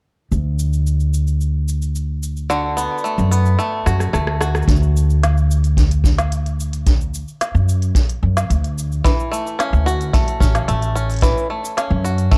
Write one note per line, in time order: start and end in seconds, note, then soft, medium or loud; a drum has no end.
0.32 2.86 D2 medium
0.32 cabasa soft
0.59 cabasa medium
0.73 cabasa soft
0.87 cabasa soft
1.00 cabasa soft
1.14 cabasa medium
1.27 cabasa soft
1.41 cabasa soft
1.68 cabasa medium
1.82 cabasa soft
1.95 cabasa soft
2.23 cabasa medium
2.37 cabasa soft
2.50 4.13 D3 medium
2.50 3.86 F#4 medium
2.50 cabasa soft
2.77 3.31 B3 medium
2.77 cabasa medium
2.98 cabasa soft
3.04 3.58 A3 medium
3.04 cabasa soft
3.18 3.54 F#2 medium
3.18 cabasa soft
3.31 4.40 B3 medium
3.31 cabasa medium
3.46 cabasa soft
3.59 4.13 A3 medium
3.59 cabasa soft
3.86 4.07 F#2 medium
3.86 4.41 F#4 medium
3.86 cross-stick soft
3.86 cabasa medium
4.00 cross-stick medium
4.00 cabasa soft
4.13 4.63 D2 medium
4.13 5.23 A3 medium
4.13 cross-stick medium
4.13 cabasa soft
4.27 cross-stick medium
4.41 5.23 F#4 medium
4.41 cross-stick medium
4.41 cabasa medium
4.55 cross-stick medium
4.55 cabasa soft
4.62 cabasa soft
4.68 7.22 D2 medium
4.68 kick loud
4.68 closed hi-hat medium
4.68 cabasa soft
4.76 cabasa soft
4.83 cabasa soft
4.97 cabasa medium
5.10 cabasa soft
5.23 snare medium
5.23 closed hi-hat medium
5.23 cabasa soft
5.37 cabasa soft
5.51 cabasa medium
5.64 closed hi-hat soft
5.64 cabasa soft
5.77 kick loud
5.77 closed hi-hat medium
5.77 cabasa soft
5.91 closed hi-hat soft
5.91 cabasa soft
6.04 kick medium
6.04 cabasa medium
6.18 snare medium
6.18 closed hi-hat soft
6.18 cabasa soft
6.32 closed hi-hat medium
6.32 cabasa soft
6.46 closed hi-hat soft
6.46 cabasa soft
6.60 cabasa medium
6.73 closed hi-hat soft
6.73 cabasa soft
6.87 kick loud
6.87 closed hi-hat medium
6.87 cabasa soft
7.01 cabasa soft
7.14 cabasa medium
7.28 cabasa soft
7.41 snare medium
7.41 closed hi-hat medium
7.41 cabasa soft
7.55 7.90 F#2 medium
7.55 cabasa soft
7.69 cabasa medium
7.82 closed hi-hat soft
7.82 cabasa soft
7.95 kick loud
7.95 closed hi-hat medium
7.95 cabasa soft
8.09 closed hi-hat soft
8.09 cabasa soft
8.23 8.44 F#2 medium
8.37 snare medium
8.37 closed hi-hat soft
8.37 cabasa medium
8.50 8.99 D2 medium
8.50 closed hi-hat medium
8.50 cabasa soft
8.64 closed hi-hat soft
8.64 cabasa soft
8.78 cabasa medium
8.92 cabasa soft
9.04 11.21 E3 medium
9.04 kick loud
9.04 closed hi-hat medium
9.04 cabasa soft
9.20 cabasa soft
9.32 10.13 A3 medium
9.32 cabasa medium
9.47 cabasa soft
9.59 10.39 C#4 medium
9.59 snare medium
9.59 closed hi-hat medium
9.59 cabasa soft
9.73 10.09 D2 medium
9.73 cabasa soft
9.86 12.03 F#4 medium
9.86 cabasa medium
10.01 closed hi-hat soft
10.01 cabasa soft
10.13 10.68 A3 medium
10.13 kick loud
10.13 closed hi-hat medium
10.13 cabasa soft
10.28 closed hi-hat soft
10.28 cabasa soft
10.40 10.62 A1 medium
10.40 10.94 C#4 medium
10.40 kick loud
10.40 cabasa medium
10.55 snare medium
10.55 closed hi-hat soft
10.55 cabasa soft
10.68 11.31 A1 medium
10.68 11.50 A3 medium
10.68 closed hi-hat medium
10.68 cabasa soft
10.82 closed hi-hat soft
10.82 cabasa soft
10.96 11.76 C#4 medium
10.96 cabasa medium
11.10 closed hi-hat soft
11.10 cabasa soft
11.12 closed hi-hat soft
11.14 closed hi-hat soft
11.16 closed hi-hat soft
11.19 closed hi-hat soft
11.21 11.50 E3 medium
11.21 kick loud
11.21 closed hi-hat soft
11.23 closed hi-hat medium
11.23 cabasa soft
11.38 cabasa soft
11.50 12.31 A3 medium
11.65 cabasa medium
11.77 12.38 C#4 medium
11.77 snare medium
11.77 closed hi-hat medium
11.77 cabasa soft
11.90 12.26 F#2 medium
12.04 12.38 F#4 medium
12.04 cabasa medium
12.18 closed hi-hat soft
12.18 cabasa soft
12.31 12.38 A1 medium
12.31 12.38 A3 medium
12.31 kick loud
12.31 closed hi-hat medium
12.31 cabasa soft